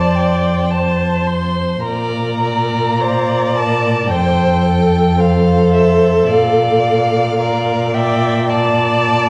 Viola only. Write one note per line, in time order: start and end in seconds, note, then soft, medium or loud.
0.00 0.74 D5 medium
0.73 1.85 C5 soft
1.86 3.02 A#4 medium
3.01 4.13 D5 medium
4.11 4.67 C5 medium
4.66 7.40 A4 medium
7.41 7.94 A#4 medium
7.96 8.49 D5 medium
8.51 9.29 D5 medium